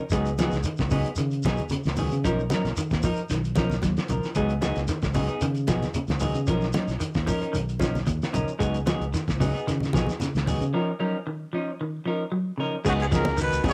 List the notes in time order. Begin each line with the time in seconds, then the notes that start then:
0.10 C#2 F#3 G#3 B3 D#4 G#4, kick, closed hi-hat, shekere
0.25 closed hi-hat, shekere
0.38 F3 F#3 B3 D#4 G#4, snare, closed hi-hat, high conga, shekere
0.52 C#2, snare, closed hi-hat, shekere
0.63 D#3, closed hi-hat, high conga, shekere
0.77 C#2, kick, snare, closed hi-hat, shekere
0.90 C#3 F#3 B3 D#4 G#4, kick, open hi-hat, low conga, shekere
1.05 closed hi-hat, shekere
1.16 C#3 D#3, closed hi-hat, high conga, shekere
1.31 closed hi-hat, shekere
1.43 B1 F#3 B3 D#4 G#4, muted clean electric guitar stroke, kick, closed hi-hat, high conga, shekere
1.47 snare
1.57 closed hi-hat, high conga, shekere
1.69 C#3, muted fingered electric bass stroke, closed hi-hat, high conga, shekere
1.83 C#2, snare, closed hi-hat, shekere
1.96 D#3 F#3 B3 G#4, muted clean electric guitar stroke, open hi-hat, high conga, low conga, shekere
2.11 C#3, closed hi-hat, shekere
2.24 B1 F3 C#4 D#4 A#4, kick, closed hi-hat, high conga, shekere
2.40 shekere
2.50 F3 F#3 C#4 D#4 A#4, snare, closed hi-hat, high conga, shekere
2.65 B1, snare, closed hi-hat, shekere
2.76 D#3, muted fingered electric bass stroke, closed hi-hat, high conga, shekere
2.90 D#2, kick, snare, closed hi-hat, shekere
3.03 F3 D#4 A#4, kick, open hi-hat, low conga, shekere
3.16 muted fingered electric bass stroke, closed hi-hat, shekere
3.29 B1 D#3, snare, closed hi-hat, high conga, shekere
3.44 closed hi-hat, shekere
3.55 F3 C#4 D#4 A#4, kick, snare, closed hi-hat, high conga, shekere
3.70 snare, closed hi-hat, high conga, shekere
3.82 D#2 F#3, kick, snare, closed hi-hat, high conga, shekere
3.97 snare, closed hi-hat, shekere
4.08 B1 C#3 F3 A#4, muted clean electric guitar stroke, closed hi-hat, low conga, shekere
4.23 snare, shekere
4.35 C#2 F#3 G#3 B3 D#4 G#4, kick, closed hi-hat, high conga, shekere
4.49 closed hi-hat, shekere
4.61 F#3 B3 D#4 G#4, muted clean electric guitar stroke, snare, closed hi-hat, high conga, shekere
4.76 C#2, snare, closed hi-hat, shekere
4.88 D#3, snare, closed hi-hat, high conga, shekere
5.02 C#2, kick, snare, closed hi-hat, shekere
5.14 C#3 F#3 B3 D#4 G#4, kick, open hi-hat, low conga, shekere
5.28 B3 D#4 G#4, closed hi-hat, shekere
5.41 C#3 D#3, closed hi-hat, high conga, shekere
5.55 closed hi-hat, shekere
5.67 B1 F3 F#3 B3 D#4 G#4, kick, snare, closed hi-hat, high conga, shekere
5.82 snare, closed hi-hat, high conga, shekere
5.94 C#3, muted fingered electric bass stroke, closed hi-hat, high conga, shekere
6.07 C#2, snare, closed hi-hat, high conga, shekere
6.20 D#3 F#3 B3 D#4 G#4, open hi-hat, low conga, shekere
6.35 C#3, closed hi-hat, shekere
6.47 B1 F3 C#4 D#4 A#4, kick, closed hi-hat, high conga, shekere
6.61 snare, shekere
6.73 F3 F#3 C#4 D#4, snare, closed hi-hat, high conga, shekere
6.88 B1, snare, closed hi-hat, shekere
7.00 D#3, closed hi-hat, high conga, shekere
7.14 D#2, kick, snare, closed hi-hat, shekere
7.26 F3 C#4 D#4 A#4, kick, open hi-hat, low conga, shekere
7.41 C#4 D#4 A#4, muted fingered electric bass stroke, closed hi-hat, shekere
7.53 B1 D#3, closed hi-hat, high conga, shekere
7.69 closed hi-hat, shekere
7.79 F3 C#4 D#4, muted clean electric guitar stroke, kick, snare, closed hi-hat, high conga, shekere
7.95 snare, closed hi-hat, high conga, shekere
8.07 D#2, muted clean electric guitar stroke, kick, closed hi-hat, high conga, shekere
8.22 snare, closed hi-hat, shekere
8.32 B1 C#3 F3 C#4 D#4 A#4, closed hi-hat, low conga, shekere
8.48 muted fingered electric bass stroke, shekere
8.59 C#2 F#3 G#3 B3 D#4 G#4, kick, closed hi-hat, shekere
8.74 closed hi-hat, shekere
8.86 F3 F#3 B3 D#4 G#4, snare, closed hi-hat, high conga, shekere
9.00 C#2, closed hi-hat, shekere
9.14 D#3, snare, closed hi-hat, high conga, shekere
9.28 C#2, kick, snare, closed hi-hat, shekere
9.40 C#3 F#3 B3 D#4 G#4, kick, open hi-hat, low conga, shekere
9.54 B3 D#4 G#4, closed hi-hat, shekere
9.67 C#3 D#3, snare, closed hi-hat, high conga, shekere
9.80 snare, closed hi-hat, low conga, shekere
9.93 B1 F3 F#3 B3 D#4 G#4, kick, snare, closed hi-hat, high conga, shekere
10.06 closed hi-hat, high conga, shekere
10.10 snare
10.20 C#3, muted fingered electric bass stroke, snare, closed hi-hat, high conga, shekere
10.35 C#2, snare, closed hi-hat, shekere
10.46 D#3 F#3 B3 D#4 G#4, open hi-hat, high conga, low conga, shekere
10.61 C#3, closed hi-hat, shekere
10.73 F3 C#4 D#4 A#4
11.00 F3 F#3 C#4 D#4 A#4
11.27 D#3
11.53 F3 C#4 D#4
11.81 D#3
12.05 F3 C#4 D#4 A#4
12.32 F#3
12.58 C#3 F3 C#4 D#4 A#4
12.85 C#2 F#2 B2 F#3 G#3 B3 D#4 F#4 G#4, kick, crash, shekere
13.00 G#2 B2 G#4, closed hi-hat
13.11 A#2 C#3 F3 F#3 B3 D#4 G#4 A#4, kick, snare, closed hi-hat, shekere
13.25 C#2, snare, high conga, shekere
13.37 B2 D#3, closed hi-hat, shekere
13.42 B4
13.52 C#2, closed hi-hat, shekere
13.63 C#3 F#3 B3 D#4 G#4, kick, open hi-hat, high conga, low conga, shekere
13.68 C#3 C#5